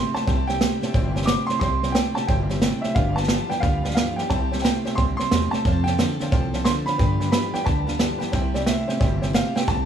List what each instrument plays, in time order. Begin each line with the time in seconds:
Already playing: clean electric guitar C3 A3, steel-string acoustic guitar C3 G3 C4 E4 G4, upright piano C6
0.14 clean electric guitar C3 A3, steel-string acoustic guitar E4 G4, honky-tonk piano C5 E5 G5, upright piano A5, muted upright bass stroke, snare
0.18 steel-string acoustic guitar C4
0.26 upright bass C2, clean electric guitar C3 G3, steel-string acoustic guitar C3 G3 C4 E4 G4, honky-tonk piano C5 E5 G5, kick, snare
0.47 clean electric guitar C3 G3, steel-string acoustic guitar C4 E4 G4, honky-tonk piano C5 E5 G5, upright piano G5, snare
0.61 clean electric guitar C3 A3, steel-string acoustic guitar C3 G3 C4 E4 G4, honky-tonk piano C5 E5 G5, snare, hi-hat pedal
0.81 clean electric guitar C3 A3, steel-string acoustic guitar C4 E4 G4, honky-tonk piano C5 E5 A5, muted upright bass stroke, snare
0.93 upright bass G1, clean electric guitar C3 G3, steel-string acoustic guitar G3 C4 E4 G4, honky-tonk piano C5 E5 G5, kick, snare
1.15 clean electric guitar C3 G3, steel-string acoustic guitar C4 E4 G4, honky-tonk piano C5 E5 G5, snare
1.22 upright piano D6, snare
1.27 clean electric guitar C3 A3, steel-string acoustic guitar C3 G3 C4 E4 G4, honky-tonk piano C5 E5 G5, snare, hi-hat pedal
1.47 clean electric guitar C3 A3, steel-string acoustic guitar E4 G4, honky-tonk piano C5, upright piano C6, muted upright bass stroke, snare
1.51 steel-string acoustic guitar C4, honky-tonk piano E5 A5
1.59 upright bass C2, steel-string acoustic guitar C3 G3 C4 E4 G4, clean electric guitar C3 G3, honky-tonk piano C5 E5 G5, upright piano C6, kick, snare
1.83 clean electric guitar C3 G3, steel-string acoustic guitar C4 E4 G4, honky-tonk piano C5 E5 G5, snare
1.92 steel-string acoustic guitar C3 G3, clean electric guitar C3, honky-tonk piano C5, upright piano G5, snare, hi-hat pedal
1.96 clean electric guitar A3, steel-string acoustic guitar C4 E4 G4, honky-tonk piano E5 G5
2.15 clean electric guitar C3 A3, steel-string acoustic guitar C4 E4 G4, honky-tonk piano C5 E5 G5, upright piano A5, muted upright bass stroke, snare
2.27 upright bass G1, clean electric guitar C3 G3, steel-string acoustic guitar G3 C4 E4 G4, honky-tonk piano C5 E5 G5, upright piano G5, kick, snare
2.49 clean electric guitar C3 G3, steel-string acoustic guitar C4 E4 G4, honky-tonk piano C5 E5 G5, snare
2.62 clean electric guitar C3 A3, steel-string acoustic guitar C3 G3 C4 E4 G4, honky-tonk piano C5 E5 G5, snare, hi-hat pedal
2.81 clean electric guitar C3 A3, steel-string acoustic guitar G4, honky-tonk piano C5 E5 G5, upright piano E5, muted upright bass stroke, snare
2.86 steel-string acoustic guitar C4 E4
2.95 upright bass G1, steel-string acoustic guitar G2 D3 F3 B3 F4 G4, clean electric guitar G2 D3, honky-tonk piano B4 D5 G5, upright piano F5, kick, snare
3.16 clean electric guitar G2 D3, steel-string acoustic guitar F3 B3 F4 G4, honky-tonk piano B4 D5 G5, upright piano A5, snare
3.23 snare
3.28 clean electric guitar G2 E3, steel-string acoustic guitar G2 D3 F3 B3 F4, honky-tonk piano B4 D5 G5, snare, hi-hat pedal
3.32 steel-string acoustic guitar G4
3.49 clean electric guitar G2 E3, steel-string acoustic guitar F4 G4, honky-tonk piano B4 D5 G5, upright piano G5, muted upright bass stroke, snare
3.54 steel-string acoustic guitar F3 B3
3.60 upright bass D2, clean electric guitar G2 D3, steel-string acoustic guitar F3 B3, honky-tonk piano B4 D5 G5, upright piano F5, kick, snare
3.65 steel-string acoustic guitar F4 G4
3.84 clean electric guitar G2 D3, steel-string acoustic guitar F3 B3 F4 G4, honky-tonk piano B4 D5 G5, snare
3.90 snare
3.95 clean electric guitar G2 E3, steel-string acoustic guitar G2 D3 F3, honky-tonk piano B4 D5 G5, upright piano F5, snare, hi-hat pedal
3.99 steel-string acoustic guitar B3 F4 G4
4.16 clean electric guitar G2 E3, steel-string acoustic guitar B3 F4 G4, honky-tonk piano B4 D5 G5, upright piano G5, muted upright bass stroke, snare
4.21 steel-string acoustic guitar F3
4.29 upright bass C2, clean electric guitar C3 G3, steel-string acoustic guitar C3 G3 C4 E4 G4, honky-tonk piano C5 E5 G5, upright piano A5, kick, snare
4.52 clean electric guitar C3 G3, steel-string acoustic guitar C4 E4 G4, honky-tonk piano C5 E5 G5, snare
4.58 upright piano G5, snare
4.63 steel-string acoustic guitar C3 G3 C4 E4 G4, clean electric guitar C3 A3, honky-tonk piano C5 E5 G5, snare, hi-hat pedal
4.85 clean electric guitar C3 A3, steel-string acoustic guitar C4 E4 G4, honky-tonk piano C5 E5 G5, muted upright bass stroke, snare
4.95 upright bass D2, clean electric guitar C3 G3, steel-string acoustic guitar G3 C4 E4 G4, honky-tonk piano C5 E5 G5, upright piano C6, kick, snare
5.17 clean electric guitar C3 G3, steel-string acoustic guitar C4 E4 G4, honky-tonk piano C5 E5 A5, upright piano C6, muted upright bass stroke, snare
5.31 upright bass E2, clean electric guitar C3 A3, steel-string acoustic guitar C3 G3 C4 E4 G4, honky-tonk piano C5 E5 A5, snare, hi-hat pedal
5.51 clean electric guitar C3 A3, steel-string acoustic guitar C4 E4 G4, honky-tonk piano C5 E5 G5, upright piano A5, muted upright bass stroke, snare
5.64 clean electric guitar F2 C3, upright bass F2, steel-string acoustic guitar F3 C4 F4 A4, honky-tonk piano C5 F5 A5, kick, snare
5.84 clean electric guitar F2 C3, steel-string acoustic guitar F4 A4, upright piano G5, snare
5.88 steel-string acoustic guitar C4, honky-tonk piano C5 F5 A5
5.98 clean electric guitar F2 D3, steel-string acoustic guitar F3 C4 F4 A4, honky-tonk piano C5 F5 A5, snare, hi-hat pedal
6.19 clean electric guitar F2 D3, steel-string acoustic guitar C4 F4 A4, honky-tonk piano C5 F5 A5, muted upright bass stroke, snare
6.32 upright bass C2, clean electric guitar F2 C3, steel-string acoustic guitar F3 C4 F4 A4, honky-tonk piano C5 F5 A5, kick, snare
6.53 clean electric guitar F2 C3, steel-string acoustic guitar C4 F4 A4, honky-tonk piano C5 F5 A5, snare
6.64 clean electric guitar F2 D3, steel-string acoustic guitar F3 C4 F4 A4, honky-tonk piano C5 F5, upright piano C6, snare, hi-hat pedal
6.69 honky-tonk piano A5
6.86 clean electric guitar F2 D3, steel-string acoustic guitar C4 F4 A4, honky-tonk piano C5 F5 A5, upright piano B5, muted upright bass stroke, snare
6.98 upright bass G2, clean electric guitar G2 D3, steel-string acoustic guitar G2 D3 F3 B3 F4 G4, honky-tonk piano B4 D5 G5, kick, snare
7.20 clean electric guitar G2 D3, steel-string acoustic guitar F3 B3 F4 G4, honky-tonk piano B4 D5 G5, snare
7.32 clean electric guitar G2 E3, steel-string acoustic guitar G2 D3 F3 B3 F4 G4, honky-tonk piano B4 D5 G5, upright piano B5, snare, hi-hat pedal
7.54 clean electric guitar G2 E3, steel-string acoustic guitar F3 B3 F4 G4, honky-tonk piano B4 D5 G5, upright piano G5, muted upright bass stroke, snare
7.64 upright bass D2, clean electric guitar G2 D3, steel-string acoustic guitar F3 B3 F4 G4, honky-tonk piano B4 D5 G5, upright piano A5, kick, snare
7.86 clean electric guitar G2 D3, steel-string acoustic guitar F3 B3 F4 G4, honky-tonk piano B4 D5 F5, snare
7.99 steel-string acoustic guitar G2 D3 F3 B3 F4 G4, clean electric guitar G2 E3, honky-tonk piano B4 D5 G5, snare, hi-hat pedal
8.19 clean electric guitar G2 E3, steel-string acoustic guitar F3 B3 F4 G4, honky-tonk piano B4 D5 G5, muted upright bass stroke, snare
8.32 upright bass C2, steel-string acoustic guitar C3 G3 C4 E4 G4, clean electric guitar C3 G3, honky-tonk piano C5 E5 G5, upright piano G5, kick, snare
8.54 clean electric guitar C3 G3, steel-string acoustic guitar C4 E4 G4, honky-tonk piano C5 E5 G5, upright piano D5, snare
8.66 steel-string acoustic guitar C3 G3 C4 E4 G4, clean electric guitar C3 A3, honky-tonk piano C5 E5 G5, upright piano E5, snare, hi-hat pedal
8.88 clean electric guitar C3 A3, steel-string acoustic guitar C4 E4 G4, honky-tonk piano C5 E5 G5, muted upright bass stroke, snare
9.00 upright bass G1, clean electric guitar C3 G3, steel-string acoustic guitar G3 C4 E4 G4, honky-tonk piano C5 E5 G5, kick, snare
9.21 clean electric guitar C3 G3, steel-string acoustic guitar C4 E4 G4, honky-tonk piano C5 E5 G5, snare
9.33 steel-string acoustic guitar C3 G3 C4 E4 G4, clean electric guitar C3 A3, honky-tonk piano C5 E5 G5, upright piano F5, snare, hi-hat pedal
9.55 clean electric guitar C3 A3, steel-string acoustic guitar C4 E4 G4, honky-tonk piano C5 E5 G5, upright piano G5, muted upright bass stroke, snare
9.66 upright bass C2, steel-string acoustic guitar C3 G3 C4 E4 G4, clean electric guitar C3 G3, upright piano A5, kick, snare